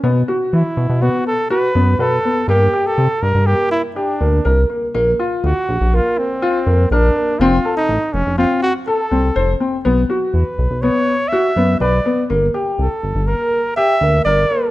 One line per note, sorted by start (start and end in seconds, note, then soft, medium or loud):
0.04 0.24 B2 loud
0.04 0.18 B3 medium
0.28 0.58 F#4 medium
0.53 0.63 E3 medium
0.53 1.03 E4 medium
0.77 0.87 B2 medium
0.90 1.09 B2 medium
1.02 1.31 B3 medium
1.02 1.26 F#4 medium
1.27 1.49 A4 medium
1.50 1.65 F#4 medium
1.50 2.02 B4 medium
1.75 1.95 F#2 medium
1.75 1.90 B3 medium
1.99 2.19 B2 medium
1.99 2.49 A4 loud
1.99 2.15 B4 medium
2.25 2.39 B3 medium
2.48 2.68 G2 medium
2.48 2.63 A#3 medium
2.48 2.88 G4 medium
2.73 3.03 G4 medium
2.87 3.24 A4 loud
2.98 3.08 C3 medium
3.22 3.33 G2 medium
3.22 3.48 A#4 medium
3.35 3.55 G2 medium
3.46 3.76 A#3 medium
3.46 3.71 G4 medium
3.71 3.82 E4 medium
3.96 4.66 D4 medium
3.96 4.11 G4 medium
4.21 4.41 D2 medium
4.21 4.35 A#3 medium
4.45 4.65 C2 medium
4.45 4.60 A#4 medium
4.70 4.84 A#3 medium
4.95 5.14 A#1 loud
4.95 5.09 A#3 medium
5.19 5.49 F4 medium
5.44 5.54 D2 medium
5.44 5.97 F#4 medium
5.69 5.78 A#1 medium
5.81 6.00 A#1 medium
5.93 6.22 A#3 medium
5.93 6.20 F4 medium
6.18 6.91 C4 medium
6.42 6.57 F4 medium
6.67 6.86 F2 medium
6.67 6.81 A#3 medium
6.91 7.11 A#1 medium
6.91 7.41 D4 medium
6.91 7.06 A#4 medium
7.16 7.30 A#3 medium
7.39 7.60 F1 loud
7.39 7.55 C4 loud
7.39 7.76 F4 medium
7.65 7.94 A4 medium
7.77 8.15 D#4 medium
7.89 7.99 A1 medium
8.13 8.24 F1 medium
8.13 8.37 C#4 medium
8.26 8.46 F1 medium
8.38 8.67 C4 medium
8.38 8.61 F4 medium
8.63 8.74 F#4 medium
8.87 9.57 A4 medium
8.87 9.02 A4 medium
9.11 9.31 C2 medium
9.11 9.26 C4 medium
9.36 9.56 F1 medium
9.36 9.50 C5 medium
9.60 9.75 C4 medium
9.85 10.05 B1 loud
9.85 10.00 B3 medium
10.10 10.39 F#4 medium
10.34 10.44 E2 medium
10.34 10.83 B4 medium
10.58 10.68 B1 medium
10.71 10.90 B1 medium
10.82 11.12 B3 medium
10.82 11.30 C#5 medium
11.28 11.79 E5 medium
11.32 11.47 F#4 medium
11.56 11.76 F#2 medium
11.56 11.71 B3 medium
11.80 12.01 B1 medium
11.80 11.96 B4 medium
11.80 12.26 D5 medium
12.06 12.20 B3 medium
12.30 12.50 G1 medium
12.30 12.44 A#3 medium
12.54 12.83 G4 medium
12.79 12.89 C2 medium
12.79 13.28 A4 medium
13.03 13.13 G1 medium
13.15 13.35 G1 medium
13.27 13.57 A#3 medium
13.27 13.76 A#4 medium
13.76 13.92 G4 medium
13.76 14.22 E5 loud
14.01 14.21 D2 medium
14.01 14.16 A#3 medium
14.25 14.45 G1 medium
14.25 14.41 A#4 medium
14.25 14.71 D5 medium
14.51 14.65 A#3 medium